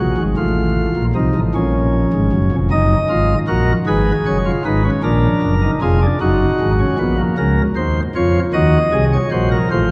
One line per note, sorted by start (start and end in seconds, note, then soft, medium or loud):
0.00 0.15 A#1 medium
0.00 0.15 A#2 medium
0.00 0.22 F#4 medium
0.17 0.35 G#1 medium
0.17 0.35 G#2 medium
0.37 0.87 A1 medium
0.37 0.88 A2 medium
0.37 1.04 F4 medium
0.96 1.13 A#1 medium
0.96 1.13 A#2 medium
1.15 1.32 C2 medium
1.15 1.32 C3 medium
1.15 1.39 D#4 medium
1.35 1.52 A1 medium
1.35 1.52 A2 medium
1.55 2.05 A#1 medium
1.55 2.05 A#2 medium
1.55 2.56 C#4 medium
2.13 2.30 G#1 medium
2.13 2.30 G#2 medium
2.32 2.49 F#1 medium
2.32 2.49 F#2 medium
2.52 2.69 F1 medium
2.52 2.69 F2 medium
2.71 2.95 F#1 medium
2.71 2.95 F#2 medium
2.71 2.96 D#4 medium
2.71 3.38 D#5 medium
3.10 3.34 G#1 medium
3.10 3.34 G#2 medium
3.10 3.34 F4 medium
3.48 3.72 A#1 medium
3.48 3.72 A#2 medium
3.48 3.72 F#4 medium
3.48 3.72 A#4 medium
3.87 4.11 G#1 medium
3.87 4.11 G#2 medium
3.87 4.37 G#4 medium
3.87 4.12 B4 medium
4.26 4.50 F#1 medium
4.26 4.50 F#2 medium
4.26 4.50 C#5 medium
4.46 4.62 F4 medium
4.65 4.89 G#1 medium
4.65 4.89 G#2 medium
4.65 4.82 D#4 medium
4.65 4.89 B4 medium
4.84 5.01 C#4 medium
5.03 5.27 A#1 medium
5.03 5.28 A#2 medium
5.03 5.54 D4 medium
5.03 5.71 A#4 medium
5.42 5.67 F#1 medium
5.42 5.66 F#2 medium
5.62 5.79 D#4 medium
5.82 6.06 F1 medium
5.82 6.06 F2 medium
5.82 5.99 F4 medium
5.82 6.06 G#4 medium
6.01 6.18 D4 medium
6.21 6.45 F#1 medium
6.21 6.45 F#2 medium
6.21 6.71 D#4 medium
6.21 7.21 F#4 medium
6.60 6.84 G#1 medium
6.60 6.84 G#2 medium
6.79 6.96 C#4 medium
6.98 7.22 A#1 medium
6.98 7.22 A#2 medium
6.98 7.15 B3 medium
7.18 7.34 A#3 medium
7.38 7.62 C#2 medium
7.38 7.62 C#3 medium
7.38 7.62 A#4 medium
7.76 8.00 D#2 medium
7.76 8.00 D#3 medium
7.76 8.00 C5 medium
8.15 8.39 F2 medium
8.15 8.39 F3 medium
8.15 8.40 F4 medium
8.15 8.39 C#5 medium
8.53 8.78 D#2 medium
8.53 8.78 D#3 medium
8.53 8.78 F#4 medium
8.53 9.04 D#5 medium
8.92 9.17 C2 medium
8.92 9.17 C3 medium
8.92 9.17 G#4 medium
9.13 9.29 C#5 medium
9.31 9.56 A#1 medium
9.31 9.56 A#2 medium
9.31 9.56 F#4 medium
9.31 9.48 C5 medium
9.52 9.68 A#4 medium
9.71 9.91 A1 medium
9.71 9.91 A2 medium
9.71 9.91 F4 medium
9.71 9.91 C5 medium